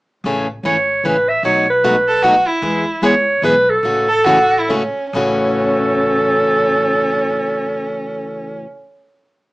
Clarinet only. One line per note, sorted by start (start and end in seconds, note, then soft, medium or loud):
0.65 1.07 C#5 medium
1.05 1.31 B4 medium
1.29 1.44 E5 medium
1.45 1.67 C#5 medium
1.70 2.44 B4 medium
3.05 3.41 C#5 medium
3.45 3.72 B4 medium
3.70 4.98 A4 medium
5.15 8.59 A4 medium